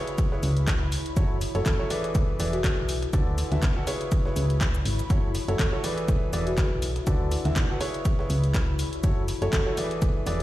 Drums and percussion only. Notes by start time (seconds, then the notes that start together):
0.07 closed hi-hat
0.18 kick, closed hi-hat, shaker
0.32 snare
0.43 open hi-hat, shaker
0.57 closed hi-hat
0.67 kick, snare, clap, closed hi-hat, shaker
0.92 open hi-hat, shaker
1.06 closed hi-hat
1.17 kick, closed hi-hat, shaker
1.41 snare, open hi-hat, shaker
1.55 closed hi-hat
1.66 kick, snare, clap, closed hi-hat, shaker
1.90 open hi-hat, shaker
2.04 closed hi-hat
2.15 kick, closed hi-hat, shaker
2.40 open hi-hat, shaker
2.53 closed hi-hat
2.64 kick, snare, clap, closed hi-hat, shaker
2.89 open hi-hat, shaker
3.02 snare, closed hi-hat
3.13 kick, closed hi-hat, shaker
3.38 snare, open hi-hat, shaker
3.52 snare, closed hi-hat
3.63 kick, snare, clap, closed hi-hat, shaker
3.87 open hi-hat, shaker
4.01 closed hi-hat
4.12 kick, closed hi-hat, shaker
4.25 snare
4.36 open hi-hat, shaker
4.50 closed hi-hat
4.61 kick, snare, clap, closed hi-hat, shaker
4.75 shaker
4.85 open hi-hat
4.99 snare, closed hi-hat, shaker
5.10 kick, closed hi-hat, shaker
5.35 snare, open hi-hat, shaker
5.48 closed hi-hat
5.59 kick, snare, clap, closed hi-hat, shaker
5.84 open hi-hat, shaker
5.98 closed hi-hat
6.08 kick, closed hi-hat, shaker
6.33 open hi-hat, shaker
6.47 closed hi-hat
6.58 kick, snare, clap, closed hi-hat, shaker
6.82 open hi-hat, shaker
6.96 snare, closed hi-hat
7.07 kick, closed hi-hat, shaker
7.31 snare, open hi-hat, shaker
7.45 snare, closed hi-hat
7.56 kick, snare, clap, closed hi-hat, shaker
7.81 open hi-hat, shaker
7.94 closed hi-hat
8.05 kick, closed hi-hat, shaker
8.19 snare
8.30 open hi-hat, shaker
8.44 closed hi-hat
8.54 kick, snare, clap, closed hi-hat, shaker
8.79 open hi-hat, shaker
8.93 closed hi-hat
9.04 kick, closed hi-hat, shaker
9.28 snare, open hi-hat, shaker
9.42 closed hi-hat
9.53 kick, snare, clap, closed hi-hat, shaker
9.77 open hi-hat, shaker
9.91 closed hi-hat
10.02 kick, closed hi-hat, shaker
10.26 open hi-hat, shaker